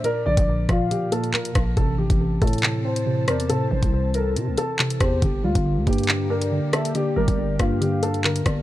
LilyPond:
<<
  \new Staff \with { instrumentName = "Soft synth lead" } { \time 4/4 \key a \phrygian \tempo 4 = 139 d''4. f''2~ f''8 | r2 r8 c''4 d''8 | c''4. a'8 r4. c''8 | r2 r8 d''4 e''8 |
d''4. f''2~ f''8 | }
  \new Staff \with { instrumentName = "Grand piano" } { \time 4/4 \key a \phrygian bes'8 d''4 f'8 g'8 a'8 bes'4 | a'8 g'4 a'4 c''4 bes'8 | a'8 c''4 bes'4 a'4 g'8 | g'8 f'4 g'4 bes'4 a'8 |
g'8 bes'4 f'8 g'8 a'8 bes'4 | }
  \new Staff \with { instrumentName = "Analog synth pad" } { \time 4/4 \key a \phrygian r1 | <e c' a''>1~ | <e c' a''>1 | <d bes g'>1~ |
<d bes g'>1 | }
  \new Staff \with { instrumentName = "Synth pluck" } { \clef bass \time 4/4 \key a \phrygian <bes, bes d'>8 d8 bes,8 f8 bes,8 bes8 bes,8 d'8 | c8 e8 c8 a8 c8 c'8 c8 c''8 | c8 e8 c4 c8 c'8 c8 c''8 | d8 g8 d8 bes8 d8 d'8 d8 d''8 |
d8 g8 d8 bes8 d8 d'8 d8 d''8 | }
  \new Staff \with { instrumentName = "808-style bass" } { \clef bass \time 4/4 \key a \phrygian r8 bes,,16 bes,,8. bes,2 bes,,8 | a,,8. a,,8. a,2 e,8 | a,8 a,,16 c,4~ c,16 c16 c,16 r4 e,8 | g,,8 d,16 g,,8 d,16 g,4.~ g,16 r8. |
r8 g,,16 g,,8. g,2 g,,8 | }
  \new DrumStaff \with { instrumentName = "Drums" } \drummode { \time 4/4 hh8. <hh bd>16 r8 <hh bd ss>8 hh8 hh16 hh16 hc16 hh16 <hh bd ss>8 | <hh bd>8. <hh bd>16 r8 <hh bd>32 hh32 hh32 hh32 hc8. hh16 r8 <hh ss>16 hh16 | hh8. <hh bd>16 r8 hh8 hh8 hh8 hc16 hh16 <hh bd ss>8 | <hh bd>8. <hh bd>16 r8 <hh bd>32 hh32 hh32 hh32 hc8. hh16 r8 <hh ss>16 hh16 |
hh8. <hh bd>16 r8 <hh bd ss>8 hh8 hh16 hh16 hc16 hh16 <hh bd ss>8 | }
>>